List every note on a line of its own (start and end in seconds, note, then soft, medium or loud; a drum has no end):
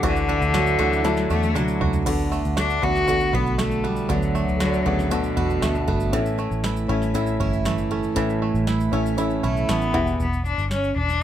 0.00 0.39 D2 medium
0.00 1.04 D3 medium
0.00 2.06 E3 medium
0.00 0.96 A3 medium
0.00 0.29 D4 medium
0.00 0.96 D4 medium
0.00 0.96 E4 medium
0.00 2.07 E4 medium
0.00 0.79 F#4 medium
0.00 0.97 F#4 medium
0.00 kick loud
0.00 shaker medium
0.04 1.79 D3 loud
0.04 0.97 D5 medium
0.16 shaker medium
0.28 1.05 D4 medium
0.28 2.83 D4 medium
0.42 0.77 D2 loud
0.42 shaker soft
0.48 0.56 E3 medium
0.54 0.81 D3 medium
0.54 1.56 F#3 medium
0.54 1.30 A3 medium
0.54 snare loud
0.54 shaker medium
0.67 shaker medium
0.79 1.26 D2 loud
0.79 1.07 E3 medium
0.79 2.57 A3 medium
0.79 1.04 F#4 medium
0.79 shaker soft
0.93 shaker medium
1.04 2.07 D3 medium
1.04 1.29 F#3 loud
1.04 1.98 A3 medium
1.04 1.98 D4 medium
1.04 1.55 D4 medium
1.04 1.98 E4 medium
1.04 1.99 F#4 medium
1.04 1.99 D5 medium
1.04 snare medium
1.04 shaker medium
1.17 snare medium
1.17 shaker soft
1.30 1.56 E2 medium
1.30 1.57 A3 loud
1.30 2.31 A3 medium
1.30 shaker medium
1.43 high tom medium
1.43 shaker soft
1.55 1.79 D2 medium
1.55 2.07 F#3 medium
1.55 2.06 F#3 medium
1.55 2.82 D4 medium
1.55 mid tom medium
1.55 shaker medium
1.68 shaker medium
1.81 2.05 C#2 loud
1.81 2.56 F#4 medium
1.81 floor tom loud
1.93 floor tom loud
1.93 shaker medium
2.06 2.42 D2 loud
2.06 4.08 D3 medium
2.06 3.08 D3 medium
2.06 2.76 B3 medium
2.06 2.76 F#4 medium
2.06 2.77 A4 medium
2.06 2.77 D5 medium
2.06 kick loud
2.06 crash loud
2.06 shaker medium
2.19 shaker soft
2.32 3.58 A3 medium
2.32 shaker medium
2.45 2.80 D2 medium
2.45 shaker soft
2.57 3.59 A3 medium
2.57 2.85 D4 medium
2.57 3.07 F#4 medium
2.57 snare loud
2.57 shaker medium
2.70 shaker medium
2.82 3.30 D2 medium
2.82 3.06 B3 medium
2.82 3.32 B3 medium
2.82 4.85 B3 medium
2.82 3.06 F#4 medium
2.82 3.37 F#4 loud
2.82 3.06 A4 medium
2.82 3.07 D5 medium
2.82 kick medium
2.96 snare soft
2.96 shaker medium
3.08 4.08 D3 medium
3.08 4.01 B3 medium
3.08 4.59 F#4 medium
3.08 4.02 F#4 medium
3.08 4.02 A4 medium
3.08 4.02 D5 medium
3.08 kick medium
3.08 shaker medium
3.20 shaker soft
3.33 4.06 B1 medium
3.33 3.83 B3 medium
3.33 3.60 B3 medium
3.33 5.36 F#4 medium
3.33 kick loud
3.46 shaker soft
3.58 4.34 A3 medium
3.58 3.84 A3 medium
3.58 3.88 A3 medium
3.58 snare loud
3.58 shaker medium
3.71 shaker soft
3.84 4.13 G3 medium
3.84 4.60 A3 medium
3.84 4.85 B3 medium
3.96 shaker medium
4.09 4.45 D2 medium
4.09 6.13 D3 medium
4.09 5.10 D3 medium
4.09 5.63 F#3 medium
4.09 4.79 B3 medium
4.09 4.80 F#4 medium
4.09 4.80 A4 medium
4.09 4.80 D5 medium
4.09 kick loud
4.09 shaker medium
4.23 shaker medium
4.35 5.62 A3 medium
4.35 shaker medium
4.48 4.83 D2 loud
4.48 shaker soft
4.60 4.88 D3 loud
4.60 5.62 A3 medium
4.60 5.10 F#4 medium
4.60 snare loud
4.60 shaker medium
4.74 shaker medium
4.86 5.33 D2 medium
4.86 5.14 C#3 medium
4.86 5.09 B3 medium
4.86 6.18 B3 medium
4.86 5.36 B3 medium
4.86 5.09 F#4 medium
4.86 5.10 A4 medium
4.86 5.10 D5 loud
4.86 kick medium
4.99 snare soft
4.99 shaker medium
5.10 6.14 B2 loud
5.10 6.18 D3 medium
5.10 6.04 B3 medium
5.10 6.18 F#4 medium
5.10 6.04 F#4 medium
5.10 6.05 A4 medium
5.10 6.05 D5 medium
5.10 shaker medium
5.24 shaker soft
5.37 5.61 E2 medium
5.37 5.87 B3 medium
5.37 6.18 F#4 medium
5.37 kick medium
5.50 shaker soft
5.62 5.90 D2 medium
5.62 6.38 A3 medium
5.62 5.87 A3 medium
5.62 snare loud
5.62 shaker medium
5.75 shaker soft
5.88 6.11 G1 medium
5.88 7.90 A3 medium
5.88 6.19 B3 medium
5.88 kick medium
6.00 shaker medium
6.12 6.48 A1 medium
6.12 7.14 A2 medium
6.12 8.15 E3 medium
6.12 6.83 C#4 medium
6.12 6.83 E4 medium
6.12 6.83 A4 medium
6.12 6.83 E5 medium
6.12 kick loud
6.12 shaker medium
6.26 shaker medium
6.38 7.65 A3 medium
6.38 shaker medium
6.51 6.86 A1 medium
6.51 shaker soft
6.64 7.66 E3 medium
6.64 7.15 E4 medium
6.64 snare loud
6.64 shaker medium
6.77 shaker medium
6.88 7.36 A1 loud
6.88 7.12 C#4 medium
6.88 7.39 C#4 medium
6.88 8.91 C#4 medium
6.88 7.12 E4 medium
6.88 7.13 A4 medium
6.88 7.13 E5 loud
6.88 kick medium
7.02 snare soft
7.02 shaker medium
7.14 8.15 A2 medium
7.14 8.07 C#4 medium
7.14 8.08 E4 medium
7.14 8.66 E4 medium
7.14 8.08 A4 medium
7.14 8.08 E5 medium
7.14 kick medium
7.14 shaker medium
7.27 shaker soft
7.40 8.13 G1 medium
7.40 7.90 C#4 medium
7.40 9.43 E4 medium
7.40 kick medium
7.53 shaker soft
7.65 8.67 E3 medium
7.65 8.41 A3 medium
7.65 snare loud
7.65 shaker medium
7.78 shaker medium
7.91 9.94 A3 medium
7.91 8.92 C#4 medium
8.03 shaker medium
8.15 8.52 A1 medium
8.15 9.17 A2 medium
8.15 9.93 E3 medium
8.15 8.86 C#4 medium
8.15 8.86 E4 medium
8.15 8.86 A4 medium
8.15 8.87 E5 medium
8.15 kick loud
8.15 shaker medium
8.30 shaker medium
8.42 9.67 A3 medium
8.54 8.90 A1 medium
8.54 shaker soft
8.67 9.69 E3 medium
8.67 9.18 E4 medium
8.67 snare loud
8.67 shaker medium
8.80 shaker medium
8.92 9.40 A1 loud
8.92 9.16 C#4 medium
8.92 10.00 C#4 medium
8.92 9.42 C#4 medium
8.92 9.16 E4 medium
8.92 9.16 A4 medium
8.92 9.16 E5 medium
8.92 shaker soft
9.06 shaker medium
9.17 9.94 A2 medium
9.17 9.94 C#4 medium
9.17 9.92 E4 medium
9.17 10.00 E4 medium
9.17 9.95 A4 medium
9.17 9.94 E5 medium
9.17 shaker medium
9.30 shaker soft
9.43 9.67 B1 medium
9.43 9.72 A3 medium
9.43 9.99 C#4 medium
9.43 10.00 E4 medium
9.43 9.67 B5 medium
9.43 shaker soft
9.57 shaker soft
9.69 9.93 A1 medium
9.69 10.00 E3 medium
9.69 9.99 A3 medium
9.69 10.21 B3 medium
9.69 9.93 A5 medium
9.69 snare loud
9.69 shaker medium
9.82 shaker soft
9.93 10.18 E1 medium
9.93 10.25 E2 medium
9.93 10.25 E3 medium
9.93 10.17 B3 medium
9.93 10.17 E4 medium
9.93 10.18 G4 medium
9.93 10.18 E5 medium
9.93 10.18 F#5 medium
9.93 kick loud
10.07 shaker soft
10.20 10.55 E1 medium
10.20 10.45 B3 medium
10.20 kick loud
10.20 shaker medium
10.33 shaker medium
10.45 10.70 D4 medium
10.45 shaker soft
10.58 10.93 G1 medium
10.58 shaker soft
10.71 10.95 C#4 medium
10.71 snare medium
10.71 shaker medium
10.84 shaker medium
10.96 11.23 E1 loud
10.96 11.23 D4 medium
10.96 kick medium
11.09 snare soft
11.09 shaker medium